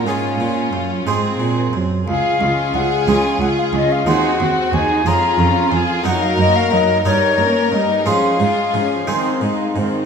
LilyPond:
<<
  \new Staff \with { instrumentName = "Flute" } { \time 6/8 \key des \major \tempo 4. = 60 aes''4. r4. | f''4 ges''8 aes''8 ges''16 f''16 ees''16 f''16 | ges''4 aes''8 bes''4 aes''8 | ges''16 f''16 ees''16 f''16 ees''8 des''4 ees''8 |
f''2~ f''8 r8 | }
  \new Staff \with { instrumentName = "Violin section" } { \time 6/8 \key des \major f'2~ f'16 r8. | aes'2. | ges'4. f'4. | bes'4. bes'4. |
aes'2~ aes'16 r8. | }
  \new Staff \with { instrumentName = "Violin section" } { \time 6/8 \key des \major f'4. aes'4 r8 | aes'8 f'8 aes'8 f'8 aes'8 f'8 | aes'8 ges'8 aes'8 aes'8 f'8 aes'8 | ees'8 ges'8 ees'8 ees'8 des'8 ees'8 |
des'8 f'8 des'8 c'8 ees'8 c'8 | }
  \new Staff \with { instrumentName = "Viola section" } { \time 6/8 \key des \major des'4. c'4 r8 | f'8 des'8 f'8 des'8 f'8 des'8 | ees'8 c'8 ees'8 f'8 des'8 f'8 | ges8 bes8 ges8 g8 bes8 g8 |
f8 aes8 f8 ees8 aes8 ees8 | }
  \new Staff \with { instrumentName = "Harpsichord" } { \time 6/8 \key des \major <des' aes'>4. <aes c' aes'>4. | r4. <aes des' aes'>4. | <aes c' aes'>4. <aes des' aes'>4. | <bes ees' ges'>4. <bes ees' bes'>4. |
<aes des' f' aes'>4. <aes c' ees' aes'>4. | }
  \new Staff \with { instrumentName = "Harpsichord" } { \clef bass \time 6/8 \key des \major aes,8 bes,8 ges,8 aes,8 bes,8 ges,8 | des,8 des,8 des,8 des,8 des,8 des,8 | ees,8 ees,8 ees,8 f,8 f,8 f,8 | ges,8 ges,8 ges,8 g,8 g,8 g,8 |
aes,8 aes,8 aes,8 aes,8 aes,8 aes,8 | }
  \new Staff \with { instrumentName = "Cello section" } { \clef bass \time 6/8 \key des \major aes,8 bes,8 ges,8 aes,8 bes,8 ges,8 | des,8 des,8 des,8 des,8 des,8 des,8 | ees,8 ees,8 ees,8 f,8 f,8 f,8 | ges,8 ges,8 ges,8 g,8 g,8 g,8 |
aes,8 aes,8 aes,8 aes,8 aes,8 aes,8 | }
>>